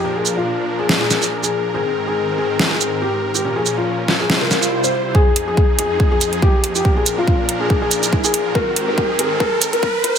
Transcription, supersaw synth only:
0, 0, Header, 1, 2, 480
1, 0, Start_track
1, 0, Tempo, 425532
1, 46, Time_signature, 4, 2, 24, 8
1, 11488, End_track
2, 0, Start_track
2, 0, Title_t, "Supersaw synth"
2, 0, Program_c, 0, 81
2, 0, Note_on_c, 0, 53, 73
2, 45, Note_on_c, 0, 62, 73
2, 45, Note_on_c, 0, 70, 87
2, 46, Note_on_c, 0, 46, 77
2, 1922, Note_off_c, 0, 53, 0
2, 1947, Note_off_c, 0, 46, 0
2, 1947, Note_off_c, 0, 62, 0
2, 1967, Note_on_c, 0, 44, 80
2, 1967, Note_on_c, 0, 51, 73
2, 1967, Note_on_c, 0, 60, 72
2, 3867, Note_off_c, 0, 44, 0
2, 3867, Note_off_c, 0, 51, 0
2, 3868, Note_off_c, 0, 60, 0
2, 3886, Note_on_c, 0, 46, 76
2, 3886, Note_on_c, 0, 53, 68
2, 3886, Note_on_c, 0, 61, 68
2, 4801, Note_off_c, 0, 70, 0
2, 4837, Note_off_c, 0, 46, 0
2, 4837, Note_off_c, 0, 53, 0
2, 4837, Note_off_c, 0, 61, 0
2, 4847, Note_on_c, 0, 72, 82
2, 4848, Note_on_c, 0, 48, 72
2, 4848, Note_on_c, 0, 55, 71
2, 4848, Note_on_c, 0, 64, 66
2, 5797, Note_off_c, 0, 48, 0
2, 5797, Note_off_c, 0, 64, 0
2, 5797, Note_off_c, 0, 72, 0
2, 5798, Note_off_c, 0, 55, 0
2, 5806, Note_on_c, 0, 41, 80
2, 5806, Note_on_c, 0, 68, 90
2, 5807, Note_on_c, 0, 53, 74
2, 5807, Note_on_c, 0, 63, 74
2, 7707, Note_off_c, 0, 41, 0
2, 7707, Note_off_c, 0, 63, 0
2, 7707, Note_off_c, 0, 68, 0
2, 7725, Note_on_c, 0, 70, 89
2, 7726, Note_on_c, 0, 46, 81
2, 7726, Note_on_c, 0, 62, 73
2, 9608, Note_off_c, 0, 53, 0
2, 9627, Note_off_c, 0, 46, 0
2, 9627, Note_off_c, 0, 62, 0
2, 9647, Note_on_c, 0, 44, 82
2, 9647, Note_on_c, 0, 51, 74
2, 9647, Note_on_c, 0, 60, 75
2, 11488, Note_off_c, 0, 44, 0
2, 11488, Note_off_c, 0, 51, 0
2, 11488, Note_off_c, 0, 60, 0
2, 11488, Note_off_c, 0, 70, 0
2, 11488, End_track
0, 0, End_of_file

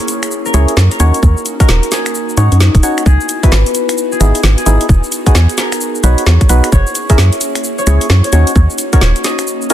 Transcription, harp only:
0, 0, Header, 1, 2, 480
1, 0, Start_track
1, 0, Tempo, 458015
1, 1287, Time_signature, 4, 2, 24, 8
1, 10202, End_track
2, 0, Start_track
2, 0, Title_t, "Harp"
2, 0, Program_c, 0, 46
2, 0, Note_on_c, 0, 68, 93
2, 0, Note_on_c, 0, 70, 103
2, 0, Note_on_c, 0, 73, 94
2, 220, Note_off_c, 0, 68, 0
2, 474, Note_off_c, 0, 70, 0
2, 478, Note_on_c, 0, 70, 96
2, 953, Note_off_c, 0, 70, 0
2, 957, Note_on_c, 0, 70, 96
2, 1674, Note_off_c, 0, 70, 0
2, 1678, Note_on_c, 0, 70, 91
2, 1760, Note_off_c, 0, 73, 0
2, 2007, Note_on_c, 0, 68, 92
2, 2488, Note_on_c, 0, 63, 93
2, 3204, Note_off_c, 0, 68, 0
2, 3209, Note_on_c, 0, 68, 100
2, 3600, Note_on_c, 0, 71, 91
2, 3662, Note_off_c, 0, 70, 0
2, 4315, Note_off_c, 0, 68, 0
2, 4319, Note_on_c, 0, 68, 97
2, 4794, Note_off_c, 0, 68, 0
2, 4798, Note_on_c, 0, 68, 99
2, 5322, Note_off_c, 0, 63, 0
2, 5514, Note_off_c, 0, 68, 0
2, 5518, Note_on_c, 0, 68, 92
2, 5747, Note_off_c, 0, 71, 0
2, 5848, Note_on_c, 0, 70, 93
2, 6327, Note_on_c, 0, 73, 96
2, 7044, Note_off_c, 0, 73, 0
2, 7048, Note_on_c, 0, 73, 101
2, 7438, Note_on_c, 0, 76, 93
2, 7901, Note_off_c, 0, 68, 0
2, 8071, Note_off_c, 0, 70, 0
2, 8154, Note_off_c, 0, 73, 0
2, 8158, Note_on_c, 0, 73, 100
2, 8634, Note_off_c, 0, 73, 0
2, 8638, Note_on_c, 0, 73, 98
2, 9244, Note_off_c, 0, 76, 0
2, 9354, Note_off_c, 0, 73, 0
2, 9358, Note_on_c, 0, 73, 96
2, 9685, Note_on_c, 0, 75, 97
2, 10166, Note_on_c, 0, 80, 99
2, 10202, Note_off_c, 0, 73, 0
2, 10202, Note_off_c, 0, 75, 0
2, 10202, Note_off_c, 0, 80, 0
2, 10202, End_track
0, 0, End_of_file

